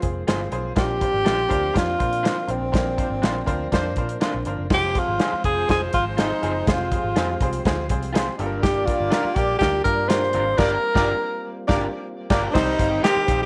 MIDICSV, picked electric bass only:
0, 0, Header, 1, 3, 480
1, 0, Start_track
1, 0, Tempo, 490597
1, 756, Time_signature, 4, 2, 24, 8
1, 13164, End_track
2, 0, Start_track
2, 0, Title_t, "Picked electric bass"
2, 0, Program_c, 0, 34
2, 30, Note_on_c, 0, 29, 84
2, 215, Note_off_c, 0, 29, 0
2, 271, Note_on_c, 0, 31, 91
2, 456, Note_off_c, 0, 31, 0
2, 507, Note_on_c, 0, 35, 83
2, 694, Note_off_c, 0, 35, 0
2, 752, Note_on_c, 0, 34, 84
2, 1030, Note_off_c, 0, 34, 0
2, 1113, Note_on_c, 0, 32, 75
2, 1207, Note_off_c, 0, 32, 0
2, 1232, Note_on_c, 0, 34, 76
2, 1418, Note_off_c, 0, 34, 0
2, 1471, Note_on_c, 0, 38, 81
2, 1658, Note_off_c, 0, 38, 0
2, 1718, Note_on_c, 0, 41, 88
2, 1903, Note_off_c, 0, 41, 0
2, 1957, Note_on_c, 0, 46, 94
2, 2234, Note_off_c, 0, 46, 0
2, 2429, Note_on_c, 0, 34, 82
2, 2526, Note_off_c, 0, 34, 0
2, 2546, Note_on_c, 0, 34, 79
2, 2644, Note_off_c, 0, 34, 0
2, 2681, Note_on_c, 0, 34, 100
2, 2957, Note_off_c, 0, 34, 0
2, 3034, Note_on_c, 0, 32, 76
2, 3130, Note_off_c, 0, 32, 0
2, 3158, Note_on_c, 0, 34, 80
2, 3344, Note_off_c, 0, 34, 0
2, 3400, Note_on_c, 0, 38, 83
2, 3585, Note_off_c, 0, 38, 0
2, 3639, Note_on_c, 0, 41, 88
2, 3881, Note_off_c, 0, 41, 0
2, 3881, Note_on_c, 0, 46, 85
2, 4066, Note_off_c, 0, 46, 0
2, 4249, Note_on_c, 0, 34, 80
2, 4340, Note_off_c, 0, 34, 0
2, 4364, Note_on_c, 0, 31, 84
2, 4456, Note_off_c, 0, 31, 0
2, 4488, Note_on_c, 0, 30, 82
2, 4579, Note_off_c, 0, 30, 0
2, 4603, Note_on_c, 0, 29, 100
2, 4879, Note_off_c, 0, 29, 0
2, 4971, Note_on_c, 0, 32, 77
2, 5061, Note_off_c, 0, 32, 0
2, 5325, Note_on_c, 0, 29, 76
2, 5509, Note_off_c, 0, 29, 0
2, 5566, Note_on_c, 0, 29, 85
2, 5750, Note_off_c, 0, 29, 0
2, 5809, Note_on_c, 0, 32, 85
2, 6175, Note_off_c, 0, 32, 0
2, 6291, Note_on_c, 0, 30, 85
2, 6473, Note_off_c, 0, 30, 0
2, 6530, Note_on_c, 0, 29, 102
2, 6803, Note_off_c, 0, 29, 0
2, 6888, Note_on_c, 0, 32, 80
2, 6979, Note_off_c, 0, 32, 0
2, 7012, Note_on_c, 0, 41, 96
2, 7193, Note_off_c, 0, 41, 0
2, 7249, Note_on_c, 0, 36, 84
2, 7431, Note_off_c, 0, 36, 0
2, 7488, Note_on_c, 0, 38, 91
2, 7731, Note_on_c, 0, 36, 79
2, 7746, Note_off_c, 0, 38, 0
2, 8095, Note_off_c, 0, 36, 0
2, 8210, Note_on_c, 0, 31, 89
2, 8666, Note_off_c, 0, 31, 0
2, 8807, Note_on_c, 0, 31, 80
2, 8898, Note_off_c, 0, 31, 0
2, 9160, Note_on_c, 0, 34, 88
2, 9345, Note_off_c, 0, 34, 0
2, 9401, Note_on_c, 0, 38, 91
2, 9585, Note_off_c, 0, 38, 0
2, 9642, Note_on_c, 0, 43, 99
2, 10119, Note_on_c, 0, 32, 91
2, 10134, Note_off_c, 0, 43, 0
2, 10304, Note_off_c, 0, 32, 0
2, 10359, Note_on_c, 0, 31, 91
2, 10524, Note_off_c, 0, 31, 0
2, 10719, Note_on_c, 0, 31, 100
2, 10883, Note_off_c, 0, 31, 0
2, 11440, Note_on_c, 0, 31, 101
2, 11603, Note_off_c, 0, 31, 0
2, 12036, Note_on_c, 0, 31, 99
2, 12200, Note_off_c, 0, 31, 0
2, 12279, Note_on_c, 0, 36, 97
2, 12461, Note_off_c, 0, 36, 0
2, 12518, Note_on_c, 0, 31, 91
2, 12700, Note_off_c, 0, 31, 0
2, 12996, Note_on_c, 0, 34, 81
2, 13164, Note_off_c, 0, 34, 0
2, 13164, End_track
3, 0, Start_track
3, 0, Title_t, "Muted picked electric bass strokes"
3, 5216, Note_on_c, 9, 29, 47
3, 5314, Note_off_c, 9, 29, 0
3, 9045, Note_on_c, 9, 29, 47
3, 9143, Note_off_c, 9, 29, 0
3, 12882, Note_on_c, 9, 29, 48
3, 12980, Note_off_c, 9, 29, 0
3, 13164, End_track
0, 0, End_of_file